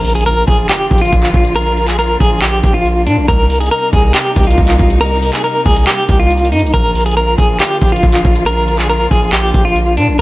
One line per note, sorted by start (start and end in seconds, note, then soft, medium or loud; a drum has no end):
0.00 0.45 A#1 loud
0.00 3.25 D3 medium
0.00 3.25 F3 medium
0.00 10.15 A#3 medium
0.00 3.25 F4 medium
0.00 0.13 A#4 loud
0.00 impact medium
0.05 closed hi-hat medium
0.05 open hi-hat medium
0.10 closed hi-hat medium
0.15 0.25 G#4 medium
0.15 closed hi-hat medium
0.21 closed hi-hat medium
0.26 0.45 A#4 medium
0.26 closed hi-hat medium
0.47 0.68 A#1 loud
0.47 0.66 G#4 medium
0.47 kick loud
0.47 closed hi-hat medium
0.69 1.00 G4 medium
0.69 clap loud
0.69 closed hi-hat medium
0.91 1.12 A#1 loud
0.91 kick loud
0.91 closed hi-hat medium
0.98 1.52 F4 medium
0.98 closed hi-hat medium
1.05 closed hi-hat medium
1.12 1.33 A#1 loud
1.12 kick loud
1.12 closed hi-hat medium
1.23 clap medium
1.34 2.17 A#1 loud
1.34 kick loud
1.34 closed hi-hat soft
1.45 closed hi-hat medium
1.56 1.86 A#4 loud
1.56 closed hi-hat medium
1.77 closed hi-hat medium
1.88 1.97 G#4 medium
1.88 clap medium
1.99 2.18 A#4 medium
1.99 closed hi-hat medium
2.20 2.62 A#1 loud
2.20 2.39 G#4 medium
2.20 kick loud
2.20 closed hi-hat medium
2.42 2.72 G4 medium
2.42 clap loud
2.42 closed hi-hat medium
2.63 3.08 A#1 loud
2.63 kick loud
2.63 closed hi-hat medium
2.74 3.05 F4 medium
2.85 closed hi-hat medium
3.07 3.19 A#2 loud
3.07 3.25 D4 medium
3.07 closed hi-hat medium
3.17 3.28 A#1 loud
3.28 3.70 C2 loud
3.28 6.70 C3 medium
3.28 6.70 G3 medium
3.28 6.70 D#4 medium
3.28 3.59 A#4 loud
3.28 kick loud
3.28 closed hi-hat medium
3.50 closed hi-hat medium
3.50 open hi-hat medium
3.55 closed hi-hat medium
3.60 3.70 G#4 medium
3.60 closed hi-hat medium
3.66 closed hi-hat medium
3.71 3.90 A#4 medium
3.71 closed hi-hat medium
3.93 4.14 C2 loud
3.93 4.12 G#4 medium
3.93 kick loud
3.93 closed hi-hat medium
4.14 4.45 G4 medium
4.14 clap loud
4.14 closed hi-hat medium
4.36 4.57 C2 loud
4.36 kick loud
4.36 closed hi-hat medium
4.43 4.98 F4 medium
4.43 closed hi-hat medium
4.51 closed hi-hat medium
4.58 4.78 C2 loud
4.58 kick loud
4.58 closed hi-hat medium
4.68 clap medium
4.79 5.31 C2 loud
4.79 kick loud
4.79 closed hi-hat soft
4.90 closed hi-hat medium
5.01 5.31 A#4 loud
5.01 closed hi-hat medium
5.23 open hi-hat medium
5.33 5.43 G#4 medium
5.33 clap medium
5.44 5.63 A#4 medium
5.44 closed hi-hat medium
5.66 5.86 C2 loud
5.66 5.84 G#4 medium
5.66 kick loud
5.66 closed hi-hat soft
5.76 closed hi-hat medium
5.87 6.18 G4 medium
5.87 clap loud
5.87 closed hi-hat medium
6.09 6.54 C2 loud
6.09 kick loud
6.09 closed hi-hat medium
6.20 6.50 F4 medium
6.30 closed hi-hat soft
6.38 closed hi-hat medium
6.45 closed hi-hat medium
6.52 6.64 G2 loud
6.52 6.71 D#4 medium
6.52 closed hi-hat medium
6.59 6.73 C2 loud
6.59 closed hi-hat medium
6.66 closed hi-hat medium
6.74 7.36 A#1 loud
6.74 10.15 D3 medium
6.74 10.15 F3 medium
6.74 10.15 F4 medium
6.74 7.04 A#4 loud
6.74 kick loud
6.74 closed hi-hat medium
6.95 closed hi-hat medium
6.95 open hi-hat medium
7.01 closed hi-hat medium
7.06 7.15 G#4 medium
7.06 closed hi-hat medium
7.11 closed hi-hat medium
7.17 7.36 A#4 medium
7.17 closed hi-hat medium
7.38 7.59 A#1 loud
7.38 7.57 G#4 medium
7.38 kick loud
7.38 closed hi-hat medium
7.60 7.90 G4 medium
7.60 clap loud
7.60 closed hi-hat medium
7.81 8.02 A#1 loud
7.81 kick loud
7.81 closed hi-hat medium
7.89 8.43 F4 medium
7.89 closed hi-hat medium
7.96 closed hi-hat medium
8.03 8.24 A#1 loud
8.03 kick loud
8.03 closed hi-hat medium
8.14 clap medium
8.25 9.08 A#1 loud
8.25 kick loud
8.25 closed hi-hat soft
8.35 closed hi-hat medium
8.46 8.77 A#4 loud
8.46 closed hi-hat medium
8.68 closed hi-hat medium
8.79 8.88 G#4 medium
8.79 clap medium
8.89 9.08 A#4 medium
8.89 closed hi-hat medium
9.11 9.52 A#1 loud
9.11 9.30 G#4 medium
9.11 kick medium
9.11 closed hi-hat medium
9.33 9.63 G4 medium
9.33 clap loud
9.33 closed hi-hat medium
9.54 9.99 A#1 loud
9.54 kick loud
9.54 closed hi-hat medium
9.65 9.95 F4 medium
9.76 closed hi-hat medium
9.97 10.10 A#2 loud
9.97 10.16 D4 medium
9.97 closed hi-hat medium
10.08 10.18 A#1 loud